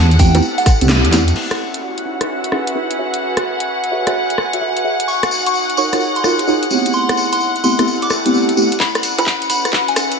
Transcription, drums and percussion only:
0.11 closed hi-hat, tambourine
0.19 kick, open hi-hat, tambourine
0.35 closed hi-hat, tambourine, high bongo
0.42 tambourine
0.58 open hi-hat, tambourine
0.66 kick, cross-stick, open hi-hat, tambourine
0.81 closed hi-hat, tambourine
0.89 snare, tambourine
1.04 closed hi-hat, tambourine
1.12 snare, open hi-hat, tambourine
1.28 closed hi-hat, tambourine
1.36 crash
1.51 cross-stick, closed hi-hat
1.74 closed hi-hat
1.98 closed hi-hat
2.21 cross-stick, closed hi-hat
2.44 closed hi-hat
2.52 cross-stick
2.67 closed hi-hat
2.91 closed hi-hat
3.14 closed hi-hat
3.37 cross-stick, closed hi-hat
3.60 closed hi-hat
3.84 closed hi-hat
4.07 cross-stick, closed hi-hat
4.30 closed hi-hat
4.38 cross-stick
4.53 closed hi-hat
4.77 closed hi-hat
5.00 closed hi-hat
5.08 tambourine
5.23 cross-stick, closed hi-hat, tambourine
5.31 tambourine
5.46 closed hi-hat, tambourine
5.54 tambourine
5.69 closed hi-hat, tambourine
5.77 tambourine
5.92 cross-stick, closed hi-hat, tambourine
6.00 tambourine
6.15 closed hi-hat, tambourine
6.24 cross-stick, tambourine
6.39 closed hi-hat, tambourine
6.47 tambourine
6.62 closed hi-hat, tambourine
6.70 tambourine
6.85 closed hi-hat, tambourine
6.93 tambourine
7.09 cross-stick, closed hi-hat, tambourine
7.17 tambourine
7.32 closed hi-hat, tambourine
7.40 tambourine
7.56 closed hi-hat, tambourine
7.64 tambourine
7.79 cross-stick, closed hi-hat, tambourine
7.87 tambourine
8.02 closed hi-hat, tambourine
8.10 cross-stick, tambourine
8.26 closed hi-hat, tambourine
8.34 tambourine
8.49 closed hi-hat, tambourine
8.57 tambourine
8.71 closed hi-hat, tambourine
8.80 kick, clap, tambourine
8.95 cross-stick, closed hi-hat, tambourine
9.03 open hi-hat, tambourine
9.18 closed hi-hat, tambourine, high bongo
9.26 kick, clap, tambourine
9.42 closed hi-hat, tambourine
9.50 open hi-hat, tambourine
9.65 cross-stick, closed hi-hat, tambourine
9.73 kick, clap, tambourine
9.88 closed hi-hat, tambourine
9.96 cross-stick, open hi-hat, tambourine
10.12 closed hi-hat, tambourine

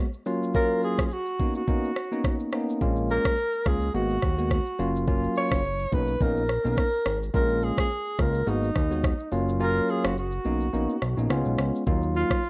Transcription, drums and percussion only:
0.14 shaker
0.26 shaker
0.43 shaker
0.55 kick, shaker
0.70 shaker
0.83 shaker
0.99 kick, cross-stick, shaker
1.11 shaker
1.26 shaker
1.39 kick, shaker
1.55 shaker
1.68 kick, shaker
1.84 shaker
1.96 cross-stick, shaker
2.12 shaker
2.24 kick, cross-stick, shaker
2.40 shaker
2.52 cross-stick, shaker
2.70 shaker
2.81 kick, shaker
2.96 shaker
3.09 shaker
3.25 kick, cross-stick, shaker
3.37 shaker
3.52 shaker
3.65 kick, cross-stick, shaker
3.81 shaker
3.94 shaker
4.10 shaker
4.22 kick, cross-stick, shaker
4.39 shaker
4.51 kick, cross-stick, shaker
4.66 shaker
4.79 shaker
4.96 shaker
5.07 kick, shaker
5.23 shaker
5.35 shaker
5.51 kick, cross-stick, shaker
5.64 shaker
5.79 shaker
5.92 kick, shaker
6.08 shaker
6.21 kick, shaker
6.37 shaker
6.49 cross-stick, shaker
6.65 shaker
6.77 kick, cross-stick, shaker
6.93 shaker
7.05 cross-stick, shaker
7.23 shaker
7.34 kick, shaker
7.49 shaker
7.62 shaker
7.78 kick, cross-stick, shaker
7.90 shaker
8.05 shaker
8.18 kick, cross-stick, shaker
8.34 shaker
8.47 shaker
8.63 shaker
8.76 kick, cross-stick, shaker
8.92 shaker
9.04 kick, cross-stick, shaker
9.19 shaker
9.32 shaker
9.49 shaker
9.60 shaker
9.76 shaker
9.88 shaker
10.04 cross-stick, shaker
10.17 shaker
10.32 shaker
10.45 shaker
10.60 shaker
10.74 shaker
10.90 shaker
11.02 cross-stick, shaker
11.18 shaker
11.30 cross-stick, shaker
11.45 shaker
11.58 cross-stick, shaker
11.75 shaker
11.87 kick, shaker
12.02 shaker
12.15 shaker
12.31 kick, cross-stick, shaker
12.43 shaker

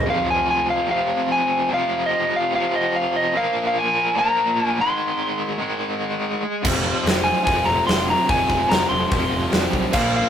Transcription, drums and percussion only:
6.65 kick, crash
7.06 snare, open hi-hat
7.47 kick, open hi-hat
7.88 snare, open hi-hat
8.29 kick, open hi-hat
8.50 kick
8.71 snare, open hi-hat
9.11 kick, open hi-hat
9.52 snare, open hi-hat
9.73 kick
9.93 kick, crash

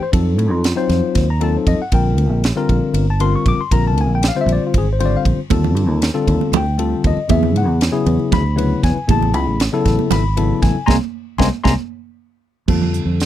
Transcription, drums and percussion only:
0.13 kick, ride
0.39 ride
0.64 snare, ride
0.90 snare, ride
1.15 kick, snare, ride
1.41 ride
1.67 kick, ride
1.92 kick, ride
2.18 ride
2.44 snare, ride
2.69 kick, ride
2.94 ride
3.20 ride
3.46 kick, ride
3.71 kick, ride
3.98 ride
4.23 snare, ride
4.49 ride
4.74 kick, ride
5.00 ride
5.25 kick, ride
5.50 kick, ride, high conga
5.64 low conga
5.77 ride
6.02 snare, ride
6.28 kick, ride
6.41 high conga, low conga
6.53 ride, low conga
6.66 low conga
6.79 ride
7.04 kick, ride
7.17 low conga
7.29 kick, ride, high conga
7.43 low conga
7.56 ride
7.81 snare, ride
8.06 ride
8.20 low conga
8.32 kick, snare, ride, low conga
8.46 low conga
8.58 ride
8.83 kick, snare, ride
8.97 low conga
9.09 kick, ride, high conga
9.22 low conga
9.34 ride
9.60 snare, ride
9.85 kick, snare, ride
9.99 high conga, low conga
10.11 snare, ride, low conga
10.24 low conga
10.37 ride
10.63 kick, snare, ride
10.75 low conga
10.88 kick, snare, high conga
11.38 kick, snare, high conga
11.65 kick, snare, high conga
12.68 kick, crash, high conga, low conga
12.82 low conga
12.94 closed hi-hat
13.20 snare, closed hi-hat

